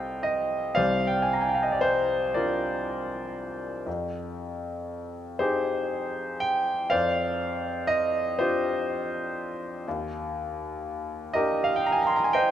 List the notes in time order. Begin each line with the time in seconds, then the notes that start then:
Already playing: C2 G4 A4 C5 D#5 F5 G5
0.23 D#5
0.75 C2 C5 D5 F5
1.07 G5
1.22 G#5
1.33 A#5
1.41 G#5
1.49 G5
1.55 F5
1.63 D#5
1.72 D5
1.81 C5
2.34 D4 F4 A#4 D5
3.86 F2
5.39 D#4 G4 G#4 C5
6.40 G5
6.90 F2 C5 D5 F5
7.87 D#5
8.39 D4 F4 G4 C5
9.88 D#2
11.34 D4 G4 A#4 D#5
11.64 F5
11.76 G5
11.86 A#5
11.92 G#5
12.02 A#5
12.07 C6
12.16 A#5
12.24 G#5
12.33 C5 D#5 G5